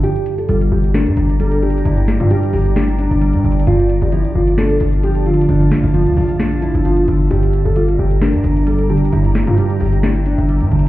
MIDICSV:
0, 0, Header, 1, 6, 480
1, 0, Start_track
1, 0, Tempo, 454545
1, 36, Time_signature, 4, 2, 24, 8
1, 11496, End_track
2, 0, Start_track
2, 0, Title_t, "Ambient pad"
2, 0, Program_c, 0, 92
2, 35, Note_on_c, 0, 82, 92
2, 36, Note_on_c, 0, 67, 82
2, 36, Note_on_c, 0, 74, 72
2, 3837, Note_off_c, 0, 82, 0
2, 3838, Note_off_c, 0, 67, 0
2, 3875, Note_on_c, 0, 81, 93
2, 3876, Note_on_c, 0, 65, 80
2, 5754, Note_off_c, 0, 74, 0
2, 5794, Note_on_c, 0, 76, 72
2, 7677, Note_off_c, 0, 81, 0
2, 7678, Note_off_c, 0, 65, 0
2, 7696, Note_off_c, 0, 76, 0
2, 7716, Note_on_c, 0, 74, 75
2, 7716, Note_on_c, 0, 82, 90
2, 7717, Note_on_c, 0, 67, 82
2, 9617, Note_off_c, 0, 74, 0
2, 9635, Note_on_c, 0, 76, 75
2, 11496, Note_off_c, 0, 67, 0
2, 11496, Note_off_c, 0, 76, 0
2, 11496, Note_off_c, 0, 82, 0
2, 11496, End_track
3, 0, Start_track
3, 0, Title_t, "Nylon-string guitar"
3, 0, Program_c, 1, 24
3, 36, Note_on_c, 1, 67, 103
3, 381, Note_off_c, 1, 67, 0
3, 404, Note_on_c, 1, 69, 69
3, 490, Note_off_c, 1, 69, 0
3, 519, Note_on_c, 1, 65, 81
3, 702, Note_off_c, 1, 65, 0
3, 758, Note_on_c, 1, 67, 78
3, 941, Note_off_c, 1, 67, 0
3, 997, Note_on_c, 1, 70, 78
3, 1448, Note_off_c, 1, 70, 0
3, 1483, Note_on_c, 1, 69, 84
3, 1664, Note_off_c, 1, 69, 0
3, 1716, Note_on_c, 1, 67, 83
3, 1900, Note_off_c, 1, 67, 0
3, 1958, Note_on_c, 1, 64, 100
3, 2303, Note_off_c, 1, 64, 0
3, 2327, Note_on_c, 1, 65, 84
3, 2412, Note_off_c, 1, 65, 0
3, 2436, Note_on_c, 1, 67, 91
3, 2620, Note_off_c, 1, 67, 0
3, 2682, Note_on_c, 1, 67, 89
3, 2864, Note_off_c, 1, 67, 0
3, 2916, Note_on_c, 1, 64, 87
3, 3100, Note_off_c, 1, 64, 0
3, 3156, Note_on_c, 1, 62, 84
3, 3834, Note_off_c, 1, 62, 0
3, 3876, Note_on_c, 1, 65, 112
3, 4221, Note_off_c, 1, 65, 0
3, 4246, Note_on_c, 1, 67, 66
3, 4331, Note_off_c, 1, 67, 0
3, 4355, Note_on_c, 1, 64, 85
3, 4539, Note_off_c, 1, 64, 0
3, 4597, Note_on_c, 1, 65, 70
3, 4781, Note_off_c, 1, 65, 0
3, 4838, Note_on_c, 1, 69, 85
3, 5289, Note_off_c, 1, 69, 0
3, 5320, Note_on_c, 1, 67, 89
3, 5502, Note_off_c, 1, 67, 0
3, 5555, Note_on_c, 1, 65, 82
3, 5739, Note_off_c, 1, 65, 0
3, 5800, Note_on_c, 1, 62, 109
3, 6143, Note_off_c, 1, 62, 0
3, 6163, Note_on_c, 1, 64, 75
3, 6250, Note_off_c, 1, 64, 0
3, 6271, Note_on_c, 1, 65, 83
3, 6457, Note_off_c, 1, 65, 0
3, 6520, Note_on_c, 1, 65, 89
3, 6703, Note_off_c, 1, 65, 0
3, 6755, Note_on_c, 1, 62, 81
3, 6940, Note_off_c, 1, 62, 0
3, 6993, Note_on_c, 1, 64, 91
3, 7178, Note_off_c, 1, 64, 0
3, 7234, Note_on_c, 1, 65, 82
3, 7419, Note_off_c, 1, 65, 0
3, 7714, Note_on_c, 1, 67, 102
3, 8060, Note_off_c, 1, 67, 0
3, 8080, Note_on_c, 1, 69, 68
3, 8168, Note_off_c, 1, 69, 0
3, 8197, Note_on_c, 1, 65, 78
3, 8381, Note_off_c, 1, 65, 0
3, 8435, Note_on_c, 1, 67, 80
3, 8620, Note_off_c, 1, 67, 0
3, 8675, Note_on_c, 1, 70, 77
3, 9127, Note_off_c, 1, 70, 0
3, 9161, Note_on_c, 1, 69, 87
3, 9343, Note_off_c, 1, 69, 0
3, 9396, Note_on_c, 1, 67, 85
3, 9580, Note_off_c, 1, 67, 0
3, 9637, Note_on_c, 1, 64, 103
3, 9982, Note_off_c, 1, 64, 0
3, 10008, Note_on_c, 1, 65, 83
3, 10093, Note_off_c, 1, 65, 0
3, 10116, Note_on_c, 1, 67, 95
3, 10300, Note_off_c, 1, 67, 0
3, 10361, Note_on_c, 1, 67, 85
3, 10543, Note_off_c, 1, 67, 0
3, 10597, Note_on_c, 1, 64, 89
3, 10780, Note_off_c, 1, 64, 0
3, 10836, Note_on_c, 1, 62, 87
3, 11496, Note_off_c, 1, 62, 0
3, 11496, End_track
4, 0, Start_track
4, 0, Title_t, "Synth keys"
4, 0, Program_c, 2, 88
4, 0, Control_c, 2, 64, 127
4, 31, Note_on_c, 2, 43, 84
4, 48, Control_c, 2, 64, 0
4, 208, Control_c, 2, 64, 127
4, 517, Note_on_c, 2, 55, 83
4, 995, Note_on_c, 2, 62, 104
4, 1233, Note_off_c, 2, 43, 0
4, 1459, Note_off_c, 2, 55, 0
4, 1471, Note_on_c, 2, 55, 85
4, 1714, Note_on_c, 2, 50, 82
4, 1952, Note_on_c, 2, 43, 92
4, 2196, Note_off_c, 2, 62, 0
4, 2425, Note_off_c, 2, 55, 0
4, 2438, Note_on_c, 2, 55, 88
4, 2915, Note_off_c, 2, 50, 0
4, 2917, Note_on_c, 2, 62, 103
4, 3154, Note_off_c, 2, 43, 0
4, 3381, Note_off_c, 2, 55, 0
4, 3394, Note_on_c, 2, 55, 83
4, 3639, Note_on_c, 2, 50, 87
4, 3875, Note_off_c, 2, 55, 0
4, 3876, Note_off_c, 2, 62, 0
4, 3876, Note_on_c, 2, 43, 91
4, 3878, Note_off_c, 2, 50, 0
4, 3888, Control_c, 2, 64, 0
4, 4106, Control_c, 2, 64, 127
4, 4354, Note_on_c, 2, 53, 84
4, 4838, Note_on_c, 2, 62, 102
4, 5076, Note_off_c, 2, 43, 0
4, 5300, Note_off_c, 2, 53, 0
4, 5313, Note_on_c, 2, 53, 85
4, 5563, Note_on_c, 2, 50, 85
4, 5796, Note_on_c, 2, 43, 96
4, 6037, Note_off_c, 2, 62, 0
4, 6260, Note_off_c, 2, 53, 0
4, 6273, Note_on_c, 2, 53, 91
4, 6758, Note_on_c, 2, 62, 104
4, 6759, Note_off_c, 2, 50, 0
4, 6996, Note_off_c, 2, 43, 0
4, 7226, Note_off_c, 2, 53, 0
4, 7238, Note_on_c, 2, 53, 85
4, 7479, Note_on_c, 2, 50, 78
4, 7710, Note_on_c, 2, 43, 83
4, 7717, Note_off_c, 2, 53, 0
4, 7717, Note_off_c, 2, 62, 0
4, 7718, Note_off_c, 2, 50, 0
4, 7729, Control_c, 2, 64, 0
4, 7918, Control_c, 2, 64, 127
4, 8195, Note_on_c, 2, 55, 82
4, 8676, Note_on_c, 2, 62, 99
4, 8913, Note_off_c, 2, 43, 0
4, 9137, Note_off_c, 2, 55, 0
4, 9150, Note_on_c, 2, 55, 89
4, 9394, Note_on_c, 2, 50, 86
4, 9632, Note_on_c, 2, 43, 93
4, 9876, Note_off_c, 2, 62, 0
4, 10104, Note_off_c, 2, 55, 0
4, 10116, Note_on_c, 2, 55, 88
4, 10595, Note_off_c, 2, 50, 0
4, 10595, Note_on_c, 2, 62, 100
4, 10834, Note_off_c, 2, 43, 0
4, 11061, Note_off_c, 2, 55, 0
4, 11073, Note_on_c, 2, 55, 84
4, 11321, Note_on_c, 2, 50, 85
4, 11496, Note_off_c, 2, 50, 0
4, 11496, Note_off_c, 2, 55, 0
4, 11496, Note_off_c, 2, 62, 0
4, 11496, End_track
5, 0, Start_track
5, 0, Title_t, "808-style bass"
5, 0, Program_c, 3, 38
5, 517, Note_on_c, 3, 31, 102
5, 744, Note_off_c, 3, 31, 0
5, 756, Note_on_c, 3, 31, 106
5, 1125, Note_on_c, 3, 43, 98
5, 1140, Note_off_c, 3, 31, 0
5, 1231, Note_off_c, 3, 43, 0
5, 1237, Note_on_c, 3, 31, 100
5, 1928, Note_off_c, 3, 31, 0
5, 1957, Note_on_c, 3, 31, 108
5, 2309, Note_off_c, 3, 31, 0
5, 2324, Note_on_c, 3, 43, 103
5, 2662, Note_off_c, 3, 43, 0
5, 2676, Note_on_c, 3, 31, 106
5, 3259, Note_off_c, 3, 31, 0
5, 3284, Note_on_c, 3, 31, 107
5, 3524, Note_on_c, 3, 43, 97
5, 3539, Note_off_c, 3, 31, 0
5, 3631, Note_off_c, 3, 43, 0
5, 3637, Note_on_c, 3, 31, 105
5, 3867, Note_off_c, 3, 31, 0
5, 3877, Note_on_c, 3, 31, 108
5, 4229, Note_off_c, 3, 31, 0
5, 4243, Note_on_c, 3, 31, 108
5, 4483, Note_on_c, 3, 34, 99
5, 4499, Note_off_c, 3, 31, 0
5, 4590, Note_off_c, 3, 34, 0
5, 4597, Note_on_c, 3, 31, 103
5, 5057, Note_off_c, 3, 31, 0
5, 5076, Note_on_c, 3, 31, 102
5, 5767, Note_off_c, 3, 31, 0
5, 5795, Note_on_c, 3, 31, 108
5, 6035, Note_on_c, 3, 34, 97
5, 6051, Note_off_c, 3, 31, 0
5, 6156, Note_off_c, 3, 34, 0
5, 6164, Note_on_c, 3, 31, 105
5, 6403, Note_on_c, 3, 38, 98
5, 6418, Note_off_c, 3, 31, 0
5, 6510, Note_off_c, 3, 38, 0
5, 6516, Note_on_c, 3, 34, 107
5, 7099, Note_off_c, 3, 34, 0
5, 7123, Note_on_c, 3, 31, 98
5, 7462, Note_off_c, 3, 31, 0
5, 7476, Note_on_c, 3, 31, 103
5, 7706, Note_off_c, 3, 31, 0
5, 7717, Note_on_c, 3, 31, 115
5, 8069, Note_off_c, 3, 31, 0
5, 8084, Note_on_c, 3, 31, 104
5, 8422, Note_off_c, 3, 31, 0
5, 8436, Note_on_c, 3, 31, 108
5, 8804, Note_on_c, 3, 43, 100
5, 8820, Note_off_c, 3, 31, 0
5, 8911, Note_off_c, 3, 43, 0
5, 8916, Note_on_c, 3, 31, 100
5, 9607, Note_off_c, 3, 31, 0
5, 9635, Note_on_c, 3, 31, 112
5, 9988, Note_off_c, 3, 31, 0
5, 10003, Note_on_c, 3, 43, 105
5, 10342, Note_off_c, 3, 43, 0
5, 10355, Note_on_c, 3, 31, 103
5, 10939, Note_off_c, 3, 31, 0
5, 10962, Note_on_c, 3, 31, 105
5, 11203, Note_on_c, 3, 43, 100
5, 11219, Note_off_c, 3, 31, 0
5, 11310, Note_off_c, 3, 43, 0
5, 11316, Note_on_c, 3, 31, 102
5, 11496, Note_off_c, 3, 31, 0
5, 11496, End_track
6, 0, Start_track
6, 0, Title_t, "Drums"
6, 38, Note_on_c, 9, 42, 80
6, 144, Note_off_c, 9, 42, 0
6, 168, Note_on_c, 9, 42, 60
6, 274, Note_off_c, 9, 42, 0
6, 275, Note_on_c, 9, 42, 80
6, 381, Note_off_c, 9, 42, 0
6, 404, Note_on_c, 9, 42, 50
6, 510, Note_off_c, 9, 42, 0
6, 514, Note_on_c, 9, 42, 78
6, 620, Note_off_c, 9, 42, 0
6, 648, Note_on_c, 9, 42, 55
6, 753, Note_off_c, 9, 42, 0
6, 886, Note_on_c, 9, 42, 56
6, 992, Note_off_c, 9, 42, 0
6, 996, Note_on_c, 9, 42, 82
6, 997, Note_on_c, 9, 38, 112
6, 1101, Note_off_c, 9, 42, 0
6, 1102, Note_off_c, 9, 38, 0
6, 1126, Note_on_c, 9, 42, 57
6, 1232, Note_off_c, 9, 42, 0
6, 1234, Note_on_c, 9, 42, 87
6, 1340, Note_off_c, 9, 42, 0
6, 1367, Note_on_c, 9, 42, 58
6, 1472, Note_off_c, 9, 42, 0
6, 1477, Note_on_c, 9, 42, 86
6, 1582, Note_off_c, 9, 42, 0
6, 1600, Note_on_c, 9, 42, 61
6, 1705, Note_off_c, 9, 42, 0
6, 1717, Note_on_c, 9, 42, 46
6, 1797, Note_off_c, 9, 42, 0
6, 1797, Note_on_c, 9, 42, 61
6, 1877, Note_off_c, 9, 42, 0
6, 1877, Note_on_c, 9, 42, 76
6, 1957, Note_off_c, 9, 42, 0
6, 1957, Note_on_c, 9, 42, 82
6, 2063, Note_off_c, 9, 42, 0
6, 2087, Note_on_c, 9, 42, 60
6, 2193, Note_off_c, 9, 42, 0
6, 2194, Note_on_c, 9, 42, 84
6, 2197, Note_on_c, 9, 38, 94
6, 2300, Note_off_c, 9, 42, 0
6, 2302, Note_off_c, 9, 38, 0
6, 2323, Note_on_c, 9, 42, 49
6, 2429, Note_off_c, 9, 42, 0
6, 2434, Note_on_c, 9, 42, 81
6, 2539, Note_off_c, 9, 42, 0
6, 2567, Note_on_c, 9, 42, 58
6, 2672, Note_off_c, 9, 42, 0
6, 2673, Note_on_c, 9, 46, 87
6, 2779, Note_off_c, 9, 46, 0
6, 2805, Note_on_c, 9, 42, 59
6, 2911, Note_off_c, 9, 42, 0
6, 2916, Note_on_c, 9, 42, 84
6, 2917, Note_on_c, 9, 38, 111
6, 3021, Note_off_c, 9, 42, 0
6, 3022, Note_off_c, 9, 38, 0
6, 3045, Note_on_c, 9, 42, 57
6, 3150, Note_off_c, 9, 42, 0
6, 3153, Note_on_c, 9, 42, 88
6, 3259, Note_off_c, 9, 42, 0
6, 3286, Note_on_c, 9, 42, 57
6, 3392, Note_off_c, 9, 42, 0
6, 3395, Note_on_c, 9, 42, 88
6, 3501, Note_off_c, 9, 42, 0
6, 3519, Note_on_c, 9, 42, 60
6, 3624, Note_off_c, 9, 42, 0
6, 3636, Note_on_c, 9, 42, 47
6, 3716, Note_off_c, 9, 42, 0
6, 3716, Note_on_c, 9, 42, 62
6, 3796, Note_off_c, 9, 42, 0
6, 3796, Note_on_c, 9, 42, 77
6, 3876, Note_off_c, 9, 42, 0
6, 3876, Note_on_c, 9, 42, 80
6, 3982, Note_off_c, 9, 42, 0
6, 4006, Note_on_c, 9, 42, 60
6, 4112, Note_off_c, 9, 42, 0
6, 4113, Note_on_c, 9, 42, 78
6, 4219, Note_off_c, 9, 42, 0
6, 4243, Note_on_c, 9, 42, 50
6, 4348, Note_off_c, 9, 42, 0
6, 4353, Note_on_c, 9, 42, 78
6, 4459, Note_off_c, 9, 42, 0
6, 4485, Note_on_c, 9, 42, 55
6, 4591, Note_off_c, 9, 42, 0
6, 4724, Note_on_c, 9, 42, 61
6, 4830, Note_off_c, 9, 42, 0
6, 4834, Note_on_c, 9, 42, 84
6, 4835, Note_on_c, 9, 38, 109
6, 4939, Note_off_c, 9, 42, 0
6, 4940, Note_off_c, 9, 38, 0
6, 4964, Note_on_c, 9, 42, 59
6, 5070, Note_off_c, 9, 42, 0
6, 5073, Note_on_c, 9, 42, 90
6, 5179, Note_off_c, 9, 42, 0
6, 5206, Note_on_c, 9, 42, 56
6, 5311, Note_off_c, 9, 42, 0
6, 5315, Note_on_c, 9, 42, 89
6, 5421, Note_off_c, 9, 42, 0
6, 5439, Note_on_c, 9, 42, 61
6, 5544, Note_off_c, 9, 42, 0
6, 5556, Note_on_c, 9, 42, 48
6, 5635, Note_off_c, 9, 42, 0
6, 5635, Note_on_c, 9, 42, 61
6, 5715, Note_off_c, 9, 42, 0
6, 5715, Note_on_c, 9, 42, 76
6, 5795, Note_off_c, 9, 42, 0
6, 5795, Note_on_c, 9, 42, 80
6, 5901, Note_off_c, 9, 42, 0
6, 5925, Note_on_c, 9, 42, 62
6, 6031, Note_off_c, 9, 42, 0
6, 6033, Note_on_c, 9, 42, 82
6, 6035, Note_on_c, 9, 38, 94
6, 6138, Note_off_c, 9, 42, 0
6, 6141, Note_off_c, 9, 38, 0
6, 6163, Note_on_c, 9, 42, 49
6, 6268, Note_off_c, 9, 42, 0
6, 6273, Note_on_c, 9, 42, 80
6, 6378, Note_off_c, 9, 42, 0
6, 6405, Note_on_c, 9, 42, 58
6, 6511, Note_off_c, 9, 42, 0
6, 6512, Note_on_c, 9, 46, 88
6, 6618, Note_off_c, 9, 46, 0
6, 6644, Note_on_c, 9, 42, 60
6, 6749, Note_off_c, 9, 42, 0
6, 6753, Note_on_c, 9, 42, 84
6, 6754, Note_on_c, 9, 38, 111
6, 6859, Note_off_c, 9, 42, 0
6, 6860, Note_off_c, 9, 38, 0
6, 6883, Note_on_c, 9, 42, 58
6, 6989, Note_off_c, 9, 42, 0
6, 6993, Note_on_c, 9, 42, 91
6, 7098, Note_off_c, 9, 42, 0
6, 7126, Note_on_c, 9, 42, 58
6, 7231, Note_off_c, 9, 42, 0
6, 7235, Note_on_c, 9, 42, 90
6, 7340, Note_off_c, 9, 42, 0
6, 7359, Note_on_c, 9, 42, 60
6, 7464, Note_off_c, 9, 42, 0
6, 7476, Note_on_c, 9, 42, 76
6, 7581, Note_off_c, 9, 42, 0
6, 7717, Note_on_c, 9, 42, 82
6, 7822, Note_off_c, 9, 42, 0
6, 7847, Note_on_c, 9, 42, 60
6, 7952, Note_off_c, 9, 42, 0
6, 7953, Note_on_c, 9, 42, 81
6, 8059, Note_off_c, 9, 42, 0
6, 8084, Note_on_c, 9, 42, 48
6, 8190, Note_off_c, 9, 42, 0
6, 8193, Note_on_c, 9, 42, 83
6, 8298, Note_off_c, 9, 42, 0
6, 8327, Note_on_c, 9, 42, 57
6, 8432, Note_off_c, 9, 42, 0
6, 8565, Note_on_c, 9, 42, 60
6, 8671, Note_off_c, 9, 42, 0
6, 8675, Note_on_c, 9, 42, 84
6, 8676, Note_on_c, 9, 38, 106
6, 8781, Note_off_c, 9, 38, 0
6, 8781, Note_off_c, 9, 42, 0
6, 8805, Note_on_c, 9, 42, 58
6, 8910, Note_off_c, 9, 42, 0
6, 8913, Note_on_c, 9, 42, 89
6, 9019, Note_off_c, 9, 42, 0
6, 9046, Note_on_c, 9, 42, 58
6, 9151, Note_off_c, 9, 42, 0
6, 9154, Note_on_c, 9, 42, 88
6, 9260, Note_off_c, 9, 42, 0
6, 9278, Note_on_c, 9, 42, 59
6, 9383, Note_off_c, 9, 42, 0
6, 9395, Note_on_c, 9, 42, 47
6, 9476, Note_off_c, 9, 42, 0
6, 9476, Note_on_c, 9, 42, 65
6, 9555, Note_off_c, 9, 42, 0
6, 9555, Note_on_c, 9, 42, 76
6, 9636, Note_off_c, 9, 42, 0
6, 9636, Note_on_c, 9, 42, 80
6, 9741, Note_off_c, 9, 42, 0
6, 9765, Note_on_c, 9, 42, 59
6, 9871, Note_off_c, 9, 42, 0
6, 9872, Note_on_c, 9, 42, 81
6, 9875, Note_on_c, 9, 38, 93
6, 9978, Note_off_c, 9, 42, 0
6, 9980, Note_off_c, 9, 38, 0
6, 10002, Note_on_c, 9, 42, 49
6, 10108, Note_off_c, 9, 42, 0
6, 10112, Note_on_c, 9, 42, 78
6, 10218, Note_off_c, 9, 42, 0
6, 10245, Note_on_c, 9, 42, 56
6, 10351, Note_off_c, 9, 42, 0
6, 10351, Note_on_c, 9, 46, 86
6, 10457, Note_off_c, 9, 46, 0
6, 10483, Note_on_c, 9, 42, 60
6, 10589, Note_off_c, 9, 42, 0
6, 10593, Note_on_c, 9, 42, 83
6, 10594, Note_on_c, 9, 38, 107
6, 10699, Note_off_c, 9, 42, 0
6, 10700, Note_off_c, 9, 38, 0
6, 10724, Note_on_c, 9, 42, 57
6, 10829, Note_off_c, 9, 42, 0
6, 10832, Note_on_c, 9, 42, 84
6, 10938, Note_off_c, 9, 42, 0
6, 10966, Note_on_c, 9, 42, 58
6, 11072, Note_off_c, 9, 42, 0
6, 11075, Note_on_c, 9, 42, 89
6, 11181, Note_off_c, 9, 42, 0
6, 11198, Note_on_c, 9, 42, 59
6, 11304, Note_off_c, 9, 42, 0
6, 11315, Note_on_c, 9, 42, 48
6, 11396, Note_off_c, 9, 42, 0
6, 11396, Note_on_c, 9, 42, 63
6, 11496, Note_off_c, 9, 42, 0
6, 11496, End_track
0, 0, End_of_file